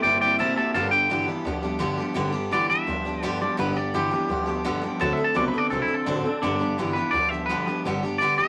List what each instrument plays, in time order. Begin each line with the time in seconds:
0.02 upright bass G1, clean electric guitar C3 A#3 D5 G5, steel-string acoustic guitar G3 C4 E4
0.07 steel-string acoustic guitar G4
0.21 steel-string acoustic guitar C4 E4 G4, clean electric guitar D5 G5
0.38 clean electric guitar C3 A#3 E5 A5, steel-string acoustic guitar C3 G3 C4 E4 G4
0.56 clean electric guitar C3 A#3 E5 A5, steel-string acoustic guitar C4 E4 G4, muted upright bass stroke
0.74 upright bass G1, clean electric guitar G2 D3 F5 A5, steel-string acoustic guitar G2 D3 G3 B3 D4 G4
0.91 steel-string acoustic guitar G3 B3 D4 G4, clean electric guitar G5
1.09 clean electric guitar G2 E3, steel-string acoustic guitar G2 D3 G3 B3 D4 G4
1.26 clean electric guitar G2 E3, steel-string acoustic guitar G3 B3 D4 G4, muted upright bass stroke
1.45 upright bass D2, clean electric guitar G2 F3, steel-string acoustic guitar G3 B3 D4 G4
1.63 steel-string acoustic guitar G3 B3 D4 G4
1.79 steel-string acoustic guitar G2 D3 G3 B3 D4 G4, clean electric guitar G2 F3
1.97 clean electric guitar G2 F3, steel-string acoustic guitar G3 B3 D4 G4, muted upright bass stroke
2.14 upright bass G1, steel-string acoustic guitar G2 D3 G3 B3 D4 G4, clean electric guitar G2 D3
2.32 steel-string acoustic guitar G3 B3 D4 G4
2.51 clean electric guitar G2 E3 D5, steel-string acoustic guitar G2 D3 G3 B3 D4 G4
2.68 clean electric guitar G2 E3 E5, steel-string acoustic guitar G3 B3 D4 G4, muted upright bass stroke
2.87 upright bass D2, clean electric guitar G2 F3, steel-string acoustic guitar G3 B3 D4 G4
3.05 steel-string acoustic guitar G3 B3 D4 G4
3.22 clean electric guitar G2 F3 D5, steel-string acoustic guitar G2 D3 G3 B3 D4 G4
3.40 clean electric guitar G2 F3 D5, steel-string acoustic guitar G3 B3 D4 G4
3.57 upright bass G1, steel-string acoustic guitar G2 D3 G3 B3 D4 G4, clean electric guitar G2 D3 B4
3.76 steel-string acoustic guitar G3 B3 D4 G4, clean electric guitar D5
3.94 steel-string acoustic guitar G2 D3 G3 B3 D4 G4, clean electric guitar G2 E3 G4
4.11 clean electric guitar G2 E3, steel-string acoustic guitar G3 B3 D4 G4, muted upright bass stroke
4.29 upright bass D2, clean electric guitar G2 F3, steel-string acoustic guitar G3 B3 D4 G4
4.46 steel-string acoustic guitar G3 B3 D4 G4
4.64 steel-string acoustic guitar G2 D3 G3 B3 D4 G4, clean electric guitar G2 F3
4.82 clean electric guitar G2 F3, steel-string acoustic guitar G3 B3 D4 G4, muted upright bass stroke
5.00 upright bass D2, steel-string acoustic guitar D3 F#3 C4 D4 A4, clean electric guitar D3 A3 A5
5.13 clean electric guitar E5
5.17 steel-string acoustic guitar C4 D4 A4
5.24 clean electric guitar A5
5.34 upright bass C2, steel-string acoustic guitar D3 F#3 C4 D4 A4, clean electric guitar D3 B3 D5
5.48 clean electric guitar B4
5.53 clean electric guitar D3 B3, steel-string acoustic guitar C4 D4 A4
5.58 clean electric guitar D5
5.69 upright bass B1, clean electric guitar D3 C4 A4, steel-string acoustic guitar F#3 C4 D4 A4
5.82 clean electric guitar E4
5.88 steel-string acoustic guitar C4 D4 A4, muted upright bass stroke
5.94 clean electric guitar A4
6.06 upright bass A1, clean electric guitar D3 C4 D4, steel-string acoustic guitar D3 F#3 C4 D4 A4
6.24 clean electric guitar D3 C4, steel-string acoustic guitar C4 D4 A4, muted upright bass stroke
6.29 clean electric guitar D4
6.42 upright bass G1, clean electric guitar G2 D3 D4, steel-string acoustic guitar G2 D3 G3 B3 D4 G4
6.59 steel-string acoustic guitar G3 B3 D4 G4
6.77 clean electric guitar G2 E3, steel-string acoustic guitar G2 D3 G3 B3 D4 G4
6.93 clean electric guitar G2 E3 B4, steel-string acoustic guitar D4 G4, muted upright bass stroke
6.97 steel-string acoustic guitar G3 B3
7.11 upright bass D2, clean electric guitar G2 F3 D5, steel-string acoustic guitar G3 B3
7.15 steel-string acoustic guitar D4 G4
7.29 steel-string acoustic guitar G4, clean electric guitar E5
7.33 steel-string acoustic guitar G3 B3 D4
7.46 clean electric guitar G2 F3 B4, steel-string acoustic guitar G2 D3
7.50 steel-string acoustic guitar G3 B3 D4 G4
7.66 clean electric guitar G2 F3, steel-string acoustic guitar G3 B3 D4 G4, muted upright bass stroke
7.85 upright bass G1, steel-string acoustic guitar G2 D3 G3 B3 D4 G4
8.03 steel-string acoustic guitar G3 B3 D4 G4
8.18 steel-string acoustic guitar G2 D3 G3 D4, clean electric guitar D5
8.22 steel-string acoustic guitar B3 G4
8.38 steel-string acoustic guitar G3 B3 D4 G4, clean electric guitar E5, muted upright bass stroke